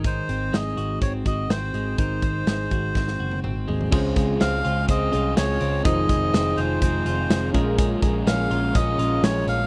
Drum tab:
CC |----------------|----------------|x---------------|----------------|
HH |x-x-x-x-x-x-x-x-|x-x-x-x---------|--x-x-x-x-x-x-x-|x-x-x-x-x-x-x-x-|
SD |----o-------o---|----o---oo------|----o-------o---|----o-------o---|
T1 |----------------|-----------o----|----------------|----------------|
T2 |----------------|------------o---|----------------|----------------|
FT |----------------|--------------oo|----------------|----------------|
BD |o-------o-o-----|o-o---o-o-------|o-o-----o-------|o-o-----o-----o-|

CC |----------------|
HH |x-x-x-x-x-x-x-x-|
SD |----o-------o---|
T1 |----------------|
T2 |----------------|
FT |----------------|
BD |o-o-----o-------|